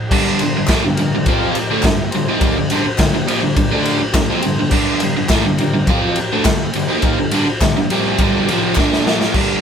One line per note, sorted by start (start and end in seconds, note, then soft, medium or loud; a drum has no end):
0.07 0.31 G4 loud
0.07 0.32 A#4 loud
0.07 0.32 D5 loud
0.07 kick loud
0.07 crash loud
0.12 0.40 G2 medium
0.12 0.40 D3 loud
0.12 0.41 G3 loud
0.38 0.60 G4 medium
0.38 0.61 A#4 medium
0.38 0.62 C5 loud
0.38 ride medium
0.42 0.56 G2 medium
0.42 0.56 D3 medium
0.57 0.70 G2 medium
0.57 0.69 D3 medium
0.66 0.83 A2 loud
0.66 0.89 G4 medium
0.66 0.90 A#4 medium
0.66 0.90 D5 loud
0.66 kick loud
0.66 snare loud
0.66 clap loud
0.66 ride loud
0.71 0.84 E3 loud
0.85 0.98 G2 medium
0.85 0.98 D3 medium
0.94 1.17 G4 loud
0.94 1.18 A#4 loud
0.94 1.18 F5 loud
0.94 ride medium
0.99 1.13 G2 medium
0.99 1.13 D3 medium
1.15 1.28 G2 medium
1.15 1.28 D3 medium
1.24 1.47 G4 medium
1.24 1.47 A#4 medium
1.24 1.48 D5 loud
1.24 kick loud
1.24 ride loud
1.28 1.55 F3 loud
1.28 1.56 C4 loud
1.28 1.56 F4 loud
1.53 1.76 G4 loud
1.53 1.76 A#4 loud
1.53 1.76 D5 loud
1.53 ride medium
1.58 muted overdriven electric guitar stroke medium
1.70 1.84 D3 medium
1.70 1.85 A3 loud
1.83 2.08 G2 medium
1.83 2.08 D3 medium
1.83 2.05 G4 medium
1.83 2.05 A#4 medium
1.83 2.05 F5 loud
1.83 kick loud
1.83 snare loud
1.83 clap loud
1.83 ride loud
2.10 2.33 G4 medium
2.10 2.34 A#4 medium
2.10 2.33 C5 loud
2.10 ride medium
2.15 2.29 G2 medium
2.15 2.28 D3 medium
2.28 2.56 D#3 medium
2.28 2.57 A#3 loud
2.28 2.57 D#4 medium
2.39 2.62 G4 loud
2.39 2.62 A#4 loud
2.39 2.63 D5 loud
2.39 kick loud
2.39 ride loud
2.57 2.70 G2 medium
2.57 2.71 D3 medium
2.70 2.84 G2 loud
2.70 2.85 D3 loud
2.70 2.92 G4 medium
2.70 2.92 A#4 medium
2.70 2.92 C5 loud
2.70 ride medium
2.86 muted overdriven electric guitar stroke medium
2.98 3.13 G2 medium
2.98 3.13 D3 medium
2.98 3.20 G4 medium
2.98 3.21 A#4 medium
2.98 3.21 F5 loud
2.98 kick loud
2.98 snare loud
2.98 clap loud
2.98 ride loud
3.14 3.29 G2 medium
3.14 3.27 D3 medium
3.25 3.42 A#2 medium
3.25 3.42 F3 loud
3.25 3.48 G4 loud
3.25 3.49 A#4 loud
3.25 3.49 D5 loud
3.25 ride medium
3.42 3.56 G2 medium
3.42 3.56 D3 medium
3.53 3.77 G4 medium
3.53 3.77 A#4 medium
3.53 3.77 D5 loud
3.53 kick loud
3.53 ride loud
3.57 3.72 G2 medium
3.57 3.70 D3 medium
3.71 4.00 D3 loud
3.71 4.00 A3 loud
3.71 4.00 D4 loud
3.83 4.06 G4 loud
3.83 4.06 A#4 loud
3.83 4.07 D5 loud
3.83 ride medium
4.01 muted overdriven electric guitar stroke medium
4.12 4.29 G2 medium
4.12 4.29 D3 medium
4.12 4.35 G4 medium
4.12 4.35 A#4 medium
4.12 4.35 D5 loud
4.12 kick loud
4.12 snare loud
4.12 clap loud
4.12 ride loud
4.30 4.43 F3 loud
4.30 4.44 C4 loud
4.40 4.58 G2 medium
4.40 4.63 G4 loud
4.40 4.63 A#4 medium
4.40 4.64 C5 loud
4.40 ride medium
4.44 4.58 D3 medium
4.59 4.71 G2 medium
4.59 4.72 D3 medium
4.69 5.01 G2 loud
4.69 4.92 G4 loud
4.69 4.92 A#4 loud
4.69 4.93 D5 loud
4.69 kick loud
4.69 crash loud
4.73 5.01 D3 loud
4.73 5.01 G3 loud
4.95 5.20 G4 medium
4.95 5.21 A#4 medium
4.95 5.21 F5 loud
5.00 5.15 G2 medium
5.00 5.16 D3 medium
5.00 ride medium
5.17 5.31 G2 medium
5.17 5.31 D3 medium
5.28 5.44 A2 loud
5.28 5.45 E3 loud
5.28 5.50 G4 loud
5.28 5.51 A#4 medium
5.28 5.51 D5 loud
5.28 kick loud
5.28 snare loud
5.28 clap loud
5.28 ride loud
5.46 5.59 G2 medium
5.46 5.60 D3 medium
5.58 5.72 G2 medium
5.58 5.73 D3 medium
5.58 5.80 G4 loud
5.58 5.80 A#4 loud
5.58 5.81 D5 loud
5.58 ride medium
5.73 5.88 G2 medium
5.73 5.88 D3 medium
5.87 6.17 F3 medium
5.87 6.17 C4 loud
5.87 6.17 F4 loud
5.87 6.09 G4 medium
5.87 6.10 A#4 medium
5.87 6.10 D5 loud
5.87 kick loud
5.87 ride loud
6.16 6.38 G4 loud
6.16 6.38 A#4 loud
6.16 6.38 D5 loud
6.16 muted overdriven electric guitar stroke medium
6.16 ride medium
6.32 6.45 D3 loud
6.32 6.46 A3 loud
6.44 6.69 G2 medium
6.44 6.69 D3 medium
6.44 6.66 G4 medium
6.44 6.67 A#4 medium
6.44 6.67 F5 loud
6.44 kick loud
6.44 snare loud
6.44 clap medium
6.44 ride loud
6.73 6.90 G2 medium
6.73 6.88 D3 medium
6.73 6.96 G4 medium
6.73 6.97 A#4 medium
6.73 6.97 D5 loud
6.73 ride medium
6.89 7.17 D#3 medium
6.89 7.17 A#3 medium
6.89 7.18 D#4 loud
7.02 7.25 G4 loud
7.02 7.25 A#4 loud
7.02 kick loud
7.02 ride loud
7.06 7.26 F5 loud
7.18 7.31 G2 medium
7.18 7.32 D3 medium
7.31 7.45 G2 loud
7.31 7.47 D3 loud
7.31 7.54 G4 medium
7.31 7.54 A#4 medium
7.31 7.55 D5 loud
7.31 ride medium
7.46 muted overdriven electric guitar stroke medium
7.61 7.76 G2 medium
7.61 7.76 D3 medium
7.61 7.83 G4 medium
7.61 7.83 A#4 medium
7.61 7.84 D5 loud
7.61 kick loud
7.61 snare loud
7.61 clap loud
7.61 ride loud
7.77 7.91 G2 medium
7.77 7.91 D3 medium
7.90 8.19 C3 medium
7.90 8.19 G3 loud
7.90 8.20 C4 loud
7.90 8.12 G4 loud
7.90 8.12 A#4 loud
7.90 8.13 D5 loud
7.90 ride medium
8.18 8.48 G2 loud
8.18 8.48 D3 loud
8.18 8.48 G3 loud
8.18 8.40 G4 medium
8.18 8.40 A#4 medium
8.18 8.40 D5 loud
8.18 kick loud
8.18 ride loud
8.45 8.77 F2 medium
8.45 8.68 G4 loud
8.45 8.68 A#4 loud
8.45 8.69 D5 loud
8.45 ride medium
8.50 8.77 C3 medium
8.50 8.78 F3 loud
8.75 9.06 G2 medium
8.75 8.97 G4 medium
8.75 8.98 A#4 medium
8.75 8.98 D5 loud
8.75 kick loud
8.75 snare medium
8.75 clap loud
8.79 9.06 D3 medium
8.79 9.06 G3 loud
8.93 snare medium
9.06 9.34 A#2 loud
9.06 9.35 F3 loud
9.06 9.35 A#3 medium
9.06 9.27 G4 medium
9.06 9.28 A#4 medium
9.06 9.28 D5 loud
9.06 snare loud
9.21 snare loud
9.32 9.61 G2 loud
9.32 9.55 G4 loud
9.32 9.56 A#4 loud
9.32 9.56 D5 loud
9.32 kick loud
9.32 crash loud
9.36 9.61 D3 loud
9.36 9.61 G3 loud